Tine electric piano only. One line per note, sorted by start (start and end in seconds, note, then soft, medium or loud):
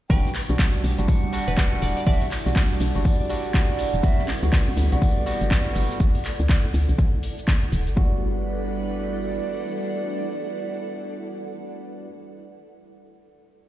0.10 0.28 G3 medium
0.10 0.28 D4 medium
0.10 0.28 F#4 loud
0.49 0.95 G3 medium
0.49 0.95 D4 medium
0.49 0.95 F#4 loud
0.98 1.30 G3 medium
0.98 1.31 D4 medium
0.98 1.31 F#4 medium
1.33 1.55 G3 medium
1.33 1.55 D4 medium
1.33 1.55 F#4 loud
1.57 2.04 G3 loud
1.57 2.04 D4 medium
1.57 2.04 F#4 loud
2.06 2.25 G3 medium
2.06 2.25 D4 medium
2.06 2.25 F#4 loud
2.46 2.92 G3 medium
2.46 2.92 D4 medium
2.46 2.92 F#4 loud
2.95 3.27 G3 medium
2.95 3.27 D4 medium
2.95 3.27 F#4 medium
3.29 3.52 G3 medium
3.29 3.52 D4 medium
3.29 3.52 F#4 loud
3.54 4.01 G3 loud
3.54 4.01 D4 medium
3.54 4.01 F#4 loud
4.03 4.22 G3 medium
4.03 4.22 B3 medium
4.03 4.22 F#4 loud
4.43 4.88 G3 medium
4.43 4.88 B3 medium
4.43 4.89 F#4 loud
4.92 5.24 G3 medium
4.92 5.24 B3 medium
4.92 5.24 F#4 medium
5.26 5.48 G3 medium
5.26 5.49 B3 medium
5.26 5.49 F#4 loud
5.51 5.98 G3 loud
5.51 5.98 B3 medium
5.51 5.98 F#4 loud
7.96 12.06 G3 medium
7.96 12.07 B3 medium
7.96 12.08 F#4 medium